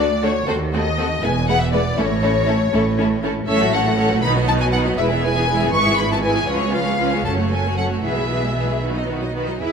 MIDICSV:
0, 0, Header, 1, 6, 480
1, 0, Start_track
1, 0, Key_signature, 3, "major"
1, 0, Tempo, 500000
1, 464, Time_signature, 6, 3, 24, 8
1, 3339, Key_signature, 4, "major"
1, 6220, Tempo, 520382
1, 9210, End_track
2, 0, Start_track
2, 0, Title_t, "Violin section"
2, 0, Program_c, 0, 48
2, 0, Note_on_c, 0, 74, 86
2, 225, Note_off_c, 0, 74, 0
2, 228, Note_on_c, 0, 73, 76
2, 464, Note_on_c, 0, 72, 65
2, 467, Note_off_c, 0, 73, 0
2, 540, Note_off_c, 0, 72, 0
2, 714, Note_on_c, 0, 75, 68
2, 1178, Note_off_c, 0, 75, 0
2, 1184, Note_on_c, 0, 80, 78
2, 1423, Note_off_c, 0, 80, 0
2, 1428, Note_on_c, 0, 78, 75
2, 1543, Note_off_c, 0, 78, 0
2, 1551, Note_on_c, 0, 76, 70
2, 1659, Note_on_c, 0, 74, 76
2, 1667, Note_off_c, 0, 76, 0
2, 1896, Note_off_c, 0, 74, 0
2, 1906, Note_on_c, 0, 73, 82
2, 3103, Note_off_c, 0, 73, 0
2, 3346, Note_on_c, 0, 76, 89
2, 3564, Note_off_c, 0, 76, 0
2, 3580, Note_on_c, 0, 78, 74
2, 4054, Note_on_c, 0, 83, 78
2, 4057, Note_off_c, 0, 78, 0
2, 4131, Note_off_c, 0, 83, 0
2, 4297, Note_on_c, 0, 81, 79
2, 4345, Note_off_c, 0, 81, 0
2, 4421, Note_on_c, 0, 80, 74
2, 4468, Note_off_c, 0, 80, 0
2, 4530, Note_on_c, 0, 78, 76
2, 4607, Note_off_c, 0, 78, 0
2, 4777, Note_on_c, 0, 76, 70
2, 4854, Note_off_c, 0, 76, 0
2, 5022, Note_on_c, 0, 80, 75
2, 5490, Note_off_c, 0, 80, 0
2, 5497, Note_on_c, 0, 85, 79
2, 5732, Note_off_c, 0, 85, 0
2, 5737, Note_on_c, 0, 83, 68
2, 5857, Note_off_c, 0, 83, 0
2, 5873, Note_on_c, 0, 81, 65
2, 5918, Note_off_c, 0, 81, 0
2, 5978, Note_on_c, 0, 80, 71
2, 6215, Note_off_c, 0, 80, 0
2, 6223, Note_on_c, 0, 73, 70
2, 6449, Note_on_c, 0, 77, 69
2, 6455, Note_off_c, 0, 73, 0
2, 6914, Note_off_c, 0, 77, 0
2, 6930, Note_on_c, 0, 81, 63
2, 7003, Note_off_c, 0, 81, 0
2, 7170, Note_on_c, 0, 80, 58
2, 7403, Note_off_c, 0, 80, 0
2, 7408, Note_on_c, 0, 78, 59
2, 7481, Note_off_c, 0, 78, 0
2, 7641, Note_on_c, 0, 76, 61
2, 8357, Note_off_c, 0, 76, 0
2, 9106, Note_on_c, 0, 76, 41
2, 9210, Note_off_c, 0, 76, 0
2, 9210, End_track
3, 0, Start_track
3, 0, Title_t, "Violin section"
3, 0, Program_c, 1, 48
3, 215, Note_on_c, 1, 69, 49
3, 222, Note_on_c, 1, 66, 49
3, 292, Note_off_c, 1, 69, 0
3, 299, Note_off_c, 1, 66, 0
3, 459, Note_on_c, 1, 69, 57
3, 462, Note_on_c, 1, 66, 57
3, 536, Note_off_c, 1, 69, 0
3, 539, Note_off_c, 1, 66, 0
3, 705, Note_on_c, 1, 66, 45
3, 709, Note_on_c, 1, 69, 51
3, 782, Note_off_c, 1, 66, 0
3, 786, Note_off_c, 1, 69, 0
3, 942, Note_on_c, 1, 69, 50
3, 945, Note_on_c, 1, 66, 45
3, 1019, Note_off_c, 1, 69, 0
3, 1022, Note_off_c, 1, 66, 0
3, 1170, Note_on_c, 1, 64, 47
3, 1171, Note_on_c, 1, 71, 51
3, 1247, Note_off_c, 1, 64, 0
3, 1248, Note_off_c, 1, 71, 0
3, 1430, Note_on_c, 1, 64, 49
3, 1433, Note_on_c, 1, 71, 51
3, 1507, Note_off_c, 1, 64, 0
3, 1510, Note_off_c, 1, 71, 0
3, 1665, Note_on_c, 1, 64, 49
3, 1666, Note_on_c, 1, 71, 52
3, 1742, Note_off_c, 1, 64, 0
3, 1743, Note_off_c, 1, 71, 0
3, 1898, Note_on_c, 1, 64, 54
3, 1900, Note_on_c, 1, 69, 55
3, 1975, Note_off_c, 1, 64, 0
3, 1977, Note_off_c, 1, 69, 0
3, 2139, Note_on_c, 1, 69, 47
3, 2140, Note_on_c, 1, 64, 53
3, 2216, Note_off_c, 1, 69, 0
3, 2217, Note_off_c, 1, 64, 0
3, 2377, Note_on_c, 1, 64, 49
3, 2380, Note_on_c, 1, 69, 54
3, 2453, Note_off_c, 1, 64, 0
3, 2457, Note_off_c, 1, 69, 0
3, 2633, Note_on_c, 1, 64, 47
3, 2636, Note_on_c, 1, 69, 53
3, 2709, Note_off_c, 1, 64, 0
3, 2713, Note_off_c, 1, 69, 0
3, 2875, Note_on_c, 1, 69, 46
3, 2877, Note_on_c, 1, 64, 51
3, 2952, Note_off_c, 1, 69, 0
3, 2954, Note_off_c, 1, 64, 0
3, 3111, Note_on_c, 1, 64, 50
3, 3112, Note_on_c, 1, 69, 53
3, 3188, Note_off_c, 1, 64, 0
3, 3189, Note_off_c, 1, 69, 0
3, 3335, Note_on_c, 1, 69, 58
3, 3340, Note_on_c, 1, 73, 56
3, 3447, Note_off_c, 1, 69, 0
3, 3450, Note_off_c, 1, 73, 0
3, 3461, Note_on_c, 1, 69, 50
3, 3463, Note_on_c, 1, 66, 53
3, 3578, Note_off_c, 1, 69, 0
3, 3580, Note_off_c, 1, 66, 0
3, 3591, Note_on_c, 1, 69, 48
3, 3594, Note_on_c, 1, 73, 49
3, 3690, Note_off_c, 1, 69, 0
3, 3702, Note_on_c, 1, 69, 52
3, 3704, Note_on_c, 1, 66, 55
3, 3705, Note_off_c, 1, 73, 0
3, 3807, Note_off_c, 1, 69, 0
3, 3819, Note_on_c, 1, 69, 50
3, 3820, Note_off_c, 1, 66, 0
3, 3821, Note_on_c, 1, 73, 49
3, 3922, Note_off_c, 1, 69, 0
3, 3930, Note_off_c, 1, 73, 0
3, 3930, Note_on_c, 1, 66, 49
3, 3934, Note_on_c, 1, 69, 51
3, 4053, Note_off_c, 1, 66, 0
3, 4053, Note_on_c, 1, 71, 49
3, 4054, Note_on_c, 1, 63, 49
3, 4055, Note_off_c, 1, 69, 0
3, 4166, Note_off_c, 1, 71, 0
3, 4167, Note_off_c, 1, 63, 0
3, 4172, Note_on_c, 1, 66, 49
3, 4175, Note_on_c, 1, 75, 47
3, 4294, Note_off_c, 1, 66, 0
3, 4296, Note_off_c, 1, 75, 0
3, 4297, Note_on_c, 1, 71, 51
3, 4300, Note_on_c, 1, 63, 49
3, 4417, Note_off_c, 1, 71, 0
3, 4419, Note_off_c, 1, 63, 0
3, 4420, Note_on_c, 1, 75, 49
3, 4421, Note_on_c, 1, 66, 48
3, 4539, Note_off_c, 1, 66, 0
3, 4539, Note_off_c, 1, 75, 0
3, 4542, Note_on_c, 1, 71, 52
3, 4545, Note_on_c, 1, 63, 50
3, 4652, Note_off_c, 1, 71, 0
3, 4654, Note_off_c, 1, 63, 0
3, 4661, Note_on_c, 1, 66, 47
3, 4662, Note_on_c, 1, 75, 46
3, 4771, Note_on_c, 1, 71, 57
3, 4772, Note_off_c, 1, 71, 0
3, 4772, Note_on_c, 1, 71, 54
3, 4780, Note_off_c, 1, 66, 0
3, 4780, Note_off_c, 1, 75, 0
3, 4887, Note_off_c, 1, 71, 0
3, 4893, Note_on_c, 1, 76, 48
3, 4895, Note_on_c, 1, 68, 51
3, 5016, Note_off_c, 1, 76, 0
3, 5016, Note_on_c, 1, 71, 49
3, 5017, Note_off_c, 1, 68, 0
3, 5017, Note_off_c, 1, 71, 0
3, 5017, Note_on_c, 1, 71, 47
3, 5138, Note_off_c, 1, 71, 0
3, 5140, Note_on_c, 1, 68, 51
3, 5140, Note_on_c, 1, 76, 48
3, 5256, Note_on_c, 1, 71, 45
3, 5257, Note_off_c, 1, 71, 0
3, 5257, Note_on_c, 1, 71, 48
3, 5259, Note_off_c, 1, 76, 0
3, 5260, Note_off_c, 1, 68, 0
3, 5369, Note_off_c, 1, 71, 0
3, 5369, Note_on_c, 1, 68, 47
3, 5369, Note_on_c, 1, 76, 46
3, 5490, Note_on_c, 1, 71, 50
3, 5493, Note_off_c, 1, 68, 0
3, 5493, Note_off_c, 1, 76, 0
3, 5497, Note_off_c, 1, 71, 0
3, 5497, Note_on_c, 1, 71, 51
3, 5608, Note_off_c, 1, 71, 0
3, 5610, Note_on_c, 1, 68, 47
3, 5618, Note_on_c, 1, 76, 45
3, 5725, Note_on_c, 1, 71, 44
3, 5726, Note_off_c, 1, 71, 0
3, 5726, Note_on_c, 1, 71, 48
3, 5734, Note_off_c, 1, 68, 0
3, 5738, Note_off_c, 1, 76, 0
3, 5852, Note_off_c, 1, 71, 0
3, 5855, Note_on_c, 1, 76, 47
3, 5858, Note_on_c, 1, 68, 47
3, 5977, Note_off_c, 1, 76, 0
3, 5977, Note_on_c, 1, 71, 46
3, 5978, Note_off_c, 1, 68, 0
3, 5978, Note_off_c, 1, 71, 0
3, 5978, Note_on_c, 1, 71, 45
3, 6090, Note_off_c, 1, 71, 0
3, 6095, Note_on_c, 1, 76, 46
3, 6096, Note_on_c, 1, 68, 45
3, 6210, Note_on_c, 1, 65, 56
3, 6211, Note_on_c, 1, 71, 51
3, 6218, Note_off_c, 1, 76, 0
3, 6219, Note_off_c, 1, 68, 0
3, 6321, Note_on_c, 1, 73, 47
3, 6324, Note_off_c, 1, 65, 0
3, 6324, Note_off_c, 1, 71, 0
3, 6326, Note_on_c, 1, 68, 46
3, 6441, Note_on_c, 1, 71, 43
3, 6444, Note_on_c, 1, 65, 42
3, 6446, Note_off_c, 1, 73, 0
3, 6448, Note_off_c, 1, 68, 0
3, 6562, Note_on_c, 1, 73, 46
3, 6565, Note_off_c, 1, 71, 0
3, 6565, Note_on_c, 1, 68, 42
3, 6566, Note_off_c, 1, 65, 0
3, 6681, Note_on_c, 1, 65, 41
3, 6683, Note_on_c, 1, 71, 40
3, 6684, Note_off_c, 1, 73, 0
3, 6686, Note_off_c, 1, 68, 0
3, 6794, Note_off_c, 1, 65, 0
3, 6795, Note_off_c, 1, 71, 0
3, 6798, Note_on_c, 1, 68, 37
3, 6801, Note_on_c, 1, 73, 43
3, 6921, Note_off_c, 1, 68, 0
3, 6923, Note_off_c, 1, 73, 0
3, 6929, Note_on_c, 1, 69, 38
3, 6932, Note_off_c, 1, 69, 0
3, 6932, Note_on_c, 1, 69, 41
3, 7040, Note_off_c, 1, 69, 0
3, 7042, Note_on_c, 1, 73, 38
3, 7045, Note_on_c, 1, 66, 41
3, 7163, Note_off_c, 1, 73, 0
3, 7165, Note_off_c, 1, 66, 0
3, 7167, Note_on_c, 1, 69, 36
3, 7169, Note_off_c, 1, 69, 0
3, 7169, Note_on_c, 1, 69, 36
3, 7287, Note_off_c, 1, 69, 0
3, 7295, Note_on_c, 1, 73, 38
3, 7299, Note_on_c, 1, 66, 38
3, 7410, Note_off_c, 1, 73, 0
3, 7412, Note_off_c, 1, 66, 0
3, 7415, Note_on_c, 1, 69, 36
3, 7417, Note_off_c, 1, 69, 0
3, 7417, Note_on_c, 1, 69, 34
3, 7522, Note_on_c, 1, 73, 37
3, 7524, Note_off_c, 1, 69, 0
3, 7526, Note_on_c, 1, 66, 34
3, 7644, Note_on_c, 1, 71, 43
3, 7645, Note_off_c, 1, 73, 0
3, 7646, Note_on_c, 1, 68, 43
3, 7647, Note_off_c, 1, 66, 0
3, 7758, Note_off_c, 1, 71, 0
3, 7759, Note_off_c, 1, 68, 0
3, 7777, Note_on_c, 1, 64, 38
3, 7781, Note_on_c, 1, 68, 37
3, 7888, Note_off_c, 1, 68, 0
3, 7894, Note_off_c, 1, 64, 0
3, 7899, Note_on_c, 1, 68, 38
3, 7900, Note_on_c, 1, 71, 35
3, 8013, Note_off_c, 1, 68, 0
3, 8016, Note_off_c, 1, 71, 0
3, 8023, Note_on_c, 1, 64, 37
3, 8024, Note_on_c, 1, 68, 37
3, 8136, Note_off_c, 1, 68, 0
3, 8138, Note_off_c, 1, 64, 0
3, 8147, Note_on_c, 1, 68, 33
3, 8150, Note_on_c, 1, 71, 32
3, 8253, Note_off_c, 1, 68, 0
3, 8255, Note_off_c, 1, 71, 0
3, 8263, Note_on_c, 1, 68, 35
3, 8264, Note_on_c, 1, 64, 33
3, 8379, Note_off_c, 1, 68, 0
3, 8380, Note_off_c, 1, 64, 0
3, 8388, Note_on_c, 1, 71, 33
3, 8391, Note_on_c, 1, 66, 35
3, 8495, Note_off_c, 1, 71, 0
3, 8496, Note_off_c, 1, 66, 0
3, 8503, Note_on_c, 1, 75, 34
3, 8510, Note_on_c, 1, 63, 34
3, 8621, Note_off_c, 1, 75, 0
3, 8624, Note_on_c, 1, 66, 33
3, 8625, Note_off_c, 1, 63, 0
3, 8627, Note_on_c, 1, 71, 34
3, 8742, Note_off_c, 1, 66, 0
3, 8744, Note_off_c, 1, 71, 0
3, 8748, Note_on_c, 1, 63, 32
3, 8752, Note_on_c, 1, 75, 32
3, 8866, Note_off_c, 1, 63, 0
3, 8868, Note_off_c, 1, 75, 0
3, 8870, Note_on_c, 1, 66, 34
3, 8870, Note_on_c, 1, 71, 34
3, 8978, Note_off_c, 1, 66, 0
3, 8978, Note_off_c, 1, 71, 0
3, 8988, Note_on_c, 1, 63, 34
3, 8988, Note_on_c, 1, 75, 32
3, 9102, Note_on_c, 1, 68, 33
3, 9102, Note_on_c, 1, 71, 34
3, 9104, Note_off_c, 1, 63, 0
3, 9104, Note_off_c, 1, 75, 0
3, 9210, Note_off_c, 1, 68, 0
3, 9210, Note_off_c, 1, 71, 0
3, 9210, End_track
4, 0, Start_track
4, 0, Title_t, "Viola section"
4, 0, Program_c, 2, 48
4, 222, Note_on_c, 2, 57, 52
4, 223, Note_on_c, 2, 62, 52
4, 299, Note_off_c, 2, 57, 0
4, 300, Note_off_c, 2, 62, 0
4, 461, Note_on_c, 2, 60, 55
4, 463, Note_on_c, 2, 57, 53
4, 538, Note_off_c, 2, 60, 0
4, 540, Note_off_c, 2, 57, 0
4, 706, Note_on_c, 2, 57, 45
4, 706, Note_on_c, 2, 60, 46
4, 783, Note_off_c, 2, 57, 0
4, 783, Note_off_c, 2, 60, 0
4, 938, Note_on_c, 2, 60, 50
4, 941, Note_on_c, 2, 57, 49
4, 1014, Note_off_c, 2, 60, 0
4, 1018, Note_off_c, 2, 57, 0
4, 1180, Note_on_c, 2, 59, 54
4, 1181, Note_on_c, 2, 56, 52
4, 1257, Note_off_c, 2, 59, 0
4, 1258, Note_off_c, 2, 56, 0
4, 1420, Note_on_c, 2, 59, 51
4, 1422, Note_on_c, 2, 56, 51
4, 1497, Note_off_c, 2, 59, 0
4, 1499, Note_off_c, 2, 56, 0
4, 1662, Note_on_c, 2, 59, 51
4, 1663, Note_on_c, 2, 56, 55
4, 1739, Note_off_c, 2, 59, 0
4, 1740, Note_off_c, 2, 56, 0
4, 1897, Note_on_c, 2, 57, 57
4, 1901, Note_on_c, 2, 61, 51
4, 1974, Note_off_c, 2, 57, 0
4, 1978, Note_off_c, 2, 61, 0
4, 2139, Note_on_c, 2, 57, 51
4, 2140, Note_on_c, 2, 61, 47
4, 2215, Note_off_c, 2, 57, 0
4, 2216, Note_off_c, 2, 61, 0
4, 2376, Note_on_c, 2, 57, 50
4, 2377, Note_on_c, 2, 61, 53
4, 2453, Note_off_c, 2, 57, 0
4, 2454, Note_off_c, 2, 61, 0
4, 2617, Note_on_c, 2, 61, 55
4, 2618, Note_on_c, 2, 57, 55
4, 2694, Note_off_c, 2, 61, 0
4, 2695, Note_off_c, 2, 57, 0
4, 2863, Note_on_c, 2, 61, 55
4, 2866, Note_on_c, 2, 57, 57
4, 2940, Note_off_c, 2, 61, 0
4, 2943, Note_off_c, 2, 57, 0
4, 3106, Note_on_c, 2, 61, 54
4, 3107, Note_on_c, 2, 57, 52
4, 3183, Note_off_c, 2, 57, 0
4, 3183, Note_off_c, 2, 61, 0
4, 3338, Note_on_c, 2, 61, 53
4, 3340, Note_on_c, 2, 57, 53
4, 3449, Note_off_c, 2, 61, 0
4, 3450, Note_off_c, 2, 57, 0
4, 3457, Note_on_c, 2, 54, 47
4, 3461, Note_on_c, 2, 57, 39
4, 3568, Note_off_c, 2, 57, 0
4, 3576, Note_off_c, 2, 54, 0
4, 3578, Note_on_c, 2, 61, 44
4, 3580, Note_on_c, 2, 57, 49
4, 3689, Note_off_c, 2, 57, 0
4, 3697, Note_off_c, 2, 61, 0
4, 3698, Note_on_c, 2, 54, 47
4, 3701, Note_on_c, 2, 57, 49
4, 3805, Note_off_c, 2, 57, 0
4, 3816, Note_off_c, 2, 54, 0
4, 3817, Note_on_c, 2, 57, 52
4, 3817, Note_on_c, 2, 61, 52
4, 3928, Note_off_c, 2, 57, 0
4, 3928, Note_off_c, 2, 61, 0
4, 3940, Note_on_c, 2, 54, 54
4, 3941, Note_on_c, 2, 57, 57
4, 4058, Note_off_c, 2, 54, 0
4, 4059, Note_off_c, 2, 57, 0
4, 4065, Note_on_c, 2, 63, 54
4, 4066, Note_on_c, 2, 51, 54
4, 4172, Note_off_c, 2, 63, 0
4, 4173, Note_off_c, 2, 51, 0
4, 4185, Note_on_c, 2, 54, 48
4, 4186, Note_on_c, 2, 59, 49
4, 4301, Note_off_c, 2, 54, 0
4, 4301, Note_off_c, 2, 59, 0
4, 4304, Note_on_c, 2, 51, 55
4, 4305, Note_on_c, 2, 63, 49
4, 4421, Note_off_c, 2, 51, 0
4, 4421, Note_off_c, 2, 63, 0
4, 4423, Note_on_c, 2, 54, 51
4, 4426, Note_on_c, 2, 59, 48
4, 4541, Note_off_c, 2, 54, 0
4, 4542, Note_off_c, 2, 59, 0
4, 4545, Note_on_c, 2, 51, 52
4, 4547, Note_on_c, 2, 63, 50
4, 4654, Note_off_c, 2, 51, 0
4, 4655, Note_off_c, 2, 63, 0
4, 4665, Note_on_c, 2, 59, 48
4, 4666, Note_on_c, 2, 54, 47
4, 4782, Note_off_c, 2, 59, 0
4, 4783, Note_off_c, 2, 54, 0
4, 4783, Note_on_c, 2, 64, 51
4, 4784, Note_on_c, 2, 56, 50
4, 4893, Note_off_c, 2, 64, 0
4, 4894, Note_off_c, 2, 56, 0
4, 4902, Note_on_c, 2, 59, 45
4, 4906, Note_on_c, 2, 52, 44
4, 5021, Note_off_c, 2, 59, 0
4, 5021, Note_on_c, 2, 64, 43
4, 5023, Note_off_c, 2, 52, 0
4, 5025, Note_on_c, 2, 56, 45
4, 5141, Note_off_c, 2, 64, 0
4, 5142, Note_off_c, 2, 56, 0
4, 5148, Note_on_c, 2, 52, 49
4, 5149, Note_on_c, 2, 59, 46
4, 5263, Note_off_c, 2, 52, 0
4, 5264, Note_off_c, 2, 59, 0
4, 5270, Note_on_c, 2, 64, 48
4, 5273, Note_on_c, 2, 56, 48
4, 5376, Note_off_c, 2, 64, 0
4, 5378, Note_off_c, 2, 56, 0
4, 5384, Note_on_c, 2, 59, 51
4, 5385, Note_on_c, 2, 52, 50
4, 5501, Note_off_c, 2, 52, 0
4, 5501, Note_off_c, 2, 59, 0
4, 5506, Note_on_c, 2, 56, 47
4, 5508, Note_on_c, 2, 64, 52
4, 5614, Note_off_c, 2, 56, 0
4, 5615, Note_off_c, 2, 64, 0
4, 5632, Note_on_c, 2, 52, 47
4, 5634, Note_on_c, 2, 59, 41
4, 5745, Note_off_c, 2, 52, 0
4, 5746, Note_off_c, 2, 59, 0
4, 5746, Note_on_c, 2, 64, 49
4, 5747, Note_on_c, 2, 56, 50
4, 5862, Note_off_c, 2, 56, 0
4, 5862, Note_off_c, 2, 64, 0
4, 5864, Note_on_c, 2, 59, 45
4, 5866, Note_on_c, 2, 52, 48
4, 5981, Note_off_c, 2, 59, 0
4, 5982, Note_off_c, 2, 52, 0
4, 5982, Note_on_c, 2, 64, 48
4, 5984, Note_on_c, 2, 56, 44
4, 6093, Note_off_c, 2, 64, 0
4, 6094, Note_off_c, 2, 56, 0
4, 6103, Note_on_c, 2, 52, 44
4, 6106, Note_on_c, 2, 59, 42
4, 6222, Note_off_c, 2, 52, 0
4, 6223, Note_off_c, 2, 59, 0
4, 6225, Note_on_c, 2, 53, 47
4, 6227, Note_on_c, 2, 61, 50
4, 6331, Note_off_c, 2, 53, 0
4, 6332, Note_off_c, 2, 61, 0
4, 6343, Note_on_c, 2, 56, 40
4, 6346, Note_on_c, 2, 59, 43
4, 6457, Note_off_c, 2, 56, 0
4, 6458, Note_off_c, 2, 59, 0
4, 6461, Note_on_c, 2, 53, 41
4, 6461, Note_on_c, 2, 61, 42
4, 6574, Note_off_c, 2, 53, 0
4, 6574, Note_off_c, 2, 61, 0
4, 6578, Note_on_c, 2, 59, 42
4, 6580, Note_on_c, 2, 56, 41
4, 6692, Note_off_c, 2, 59, 0
4, 6693, Note_off_c, 2, 56, 0
4, 6695, Note_on_c, 2, 53, 41
4, 6697, Note_on_c, 2, 61, 42
4, 6802, Note_off_c, 2, 53, 0
4, 6803, Note_off_c, 2, 61, 0
4, 6816, Note_on_c, 2, 56, 45
4, 6818, Note_on_c, 2, 59, 42
4, 6929, Note_on_c, 2, 61, 42
4, 6930, Note_off_c, 2, 56, 0
4, 6930, Note_on_c, 2, 54, 44
4, 6931, Note_off_c, 2, 59, 0
4, 7039, Note_off_c, 2, 54, 0
4, 7039, Note_off_c, 2, 61, 0
4, 7049, Note_on_c, 2, 57, 35
4, 7051, Note_off_c, 2, 57, 0
4, 7051, Note_on_c, 2, 57, 40
4, 7168, Note_off_c, 2, 57, 0
4, 7174, Note_on_c, 2, 54, 42
4, 7174, Note_on_c, 2, 61, 41
4, 7289, Note_off_c, 2, 54, 0
4, 7289, Note_off_c, 2, 61, 0
4, 7291, Note_on_c, 2, 57, 37
4, 7293, Note_off_c, 2, 57, 0
4, 7293, Note_on_c, 2, 57, 37
4, 7409, Note_off_c, 2, 57, 0
4, 7413, Note_on_c, 2, 54, 38
4, 7415, Note_on_c, 2, 61, 36
4, 7521, Note_off_c, 2, 54, 0
4, 7522, Note_off_c, 2, 61, 0
4, 7528, Note_on_c, 2, 57, 36
4, 7529, Note_off_c, 2, 57, 0
4, 7529, Note_on_c, 2, 57, 37
4, 7648, Note_on_c, 2, 52, 40
4, 7649, Note_off_c, 2, 57, 0
4, 7649, Note_on_c, 2, 59, 41
4, 7760, Note_off_c, 2, 52, 0
4, 7761, Note_off_c, 2, 59, 0
4, 7766, Note_on_c, 2, 56, 32
4, 7769, Note_off_c, 2, 56, 0
4, 7769, Note_on_c, 2, 56, 32
4, 7880, Note_on_c, 2, 59, 36
4, 7883, Note_on_c, 2, 52, 32
4, 7890, Note_off_c, 2, 56, 0
4, 8006, Note_off_c, 2, 59, 0
4, 8008, Note_off_c, 2, 52, 0
4, 8008, Note_on_c, 2, 56, 36
4, 8126, Note_on_c, 2, 59, 37
4, 8128, Note_on_c, 2, 52, 32
4, 8131, Note_off_c, 2, 56, 0
4, 8242, Note_off_c, 2, 59, 0
4, 8243, Note_off_c, 2, 52, 0
4, 8245, Note_on_c, 2, 56, 35
4, 8247, Note_off_c, 2, 56, 0
4, 8247, Note_on_c, 2, 56, 39
4, 8365, Note_on_c, 2, 51, 37
4, 8366, Note_on_c, 2, 59, 40
4, 8372, Note_off_c, 2, 56, 0
4, 8482, Note_off_c, 2, 51, 0
4, 8483, Note_off_c, 2, 59, 0
4, 8483, Note_on_c, 2, 63, 34
4, 8484, Note_on_c, 2, 54, 33
4, 8609, Note_on_c, 2, 51, 39
4, 8610, Note_on_c, 2, 59, 35
4, 8611, Note_off_c, 2, 54, 0
4, 8611, Note_off_c, 2, 63, 0
4, 8735, Note_off_c, 2, 51, 0
4, 8736, Note_off_c, 2, 59, 0
4, 8736, Note_on_c, 2, 54, 35
4, 8736, Note_on_c, 2, 63, 34
4, 8858, Note_on_c, 2, 59, 37
4, 8859, Note_off_c, 2, 63, 0
4, 8860, Note_off_c, 2, 54, 0
4, 8861, Note_on_c, 2, 51, 34
4, 8972, Note_off_c, 2, 59, 0
4, 8973, Note_off_c, 2, 51, 0
4, 8978, Note_on_c, 2, 63, 33
4, 8979, Note_on_c, 2, 54, 34
4, 9095, Note_on_c, 2, 64, 30
4, 9095, Note_on_c, 2, 68, 31
4, 9099, Note_off_c, 2, 63, 0
4, 9100, Note_off_c, 2, 54, 0
4, 9210, Note_off_c, 2, 64, 0
4, 9210, Note_off_c, 2, 68, 0
4, 9210, End_track
5, 0, Start_track
5, 0, Title_t, "Cello section"
5, 0, Program_c, 3, 48
5, 0, Note_on_c, 3, 38, 55
5, 377, Note_off_c, 3, 38, 0
5, 467, Note_on_c, 3, 39, 67
5, 1100, Note_off_c, 3, 39, 0
5, 1187, Note_on_c, 3, 40, 60
5, 1819, Note_off_c, 3, 40, 0
5, 1902, Note_on_c, 3, 45, 71
5, 2536, Note_off_c, 3, 45, 0
5, 2626, Note_on_c, 3, 45, 64
5, 3257, Note_off_c, 3, 45, 0
5, 3338, Note_on_c, 3, 45, 67
5, 4016, Note_off_c, 3, 45, 0
5, 4065, Note_on_c, 3, 47, 61
5, 4783, Note_off_c, 3, 47, 0
5, 4785, Note_on_c, 3, 40, 61
5, 5487, Note_off_c, 3, 40, 0
5, 5505, Note_on_c, 3, 44, 57
5, 6224, Note_off_c, 3, 44, 0
5, 6228, Note_on_c, 3, 37, 65
5, 6915, Note_off_c, 3, 37, 0
5, 6934, Note_on_c, 3, 42, 52
5, 7651, Note_off_c, 3, 42, 0
5, 7652, Note_on_c, 3, 47, 49
5, 8915, Note_off_c, 3, 47, 0
5, 9105, Note_on_c, 3, 64, 49
5, 9210, Note_off_c, 3, 64, 0
5, 9210, End_track
6, 0, Start_track
6, 0, Title_t, "Double bass section"
6, 0, Program_c, 4, 48
6, 0, Note_on_c, 4, 38, 65
6, 376, Note_off_c, 4, 38, 0
6, 463, Note_on_c, 4, 39, 62
6, 1098, Note_off_c, 4, 39, 0
6, 1186, Note_on_c, 4, 28, 71
6, 1819, Note_off_c, 4, 28, 0
6, 1899, Note_on_c, 4, 33, 73
6, 2535, Note_off_c, 4, 33, 0
6, 2620, Note_on_c, 4, 33, 62
6, 3254, Note_off_c, 4, 33, 0
6, 3340, Note_on_c, 4, 33, 66
6, 4018, Note_off_c, 4, 33, 0
6, 4057, Note_on_c, 4, 35, 62
6, 4779, Note_off_c, 4, 35, 0
6, 4781, Note_on_c, 4, 28, 63
6, 5485, Note_off_c, 4, 28, 0
6, 5499, Note_on_c, 4, 32, 62
6, 6220, Note_off_c, 4, 32, 0
6, 6221, Note_on_c, 4, 37, 58
6, 6912, Note_off_c, 4, 37, 0
6, 6926, Note_on_c, 4, 30, 52
6, 7647, Note_off_c, 4, 30, 0
6, 7649, Note_on_c, 4, 35, 49
6, 8913, Note_off_c, 4, 35, 0
6, 9098, Note_on_c, 4, 40, 38
6, 9172, Note_off_c, 4, 40, 0
6, 9210, End_track
0, 0, End_of_file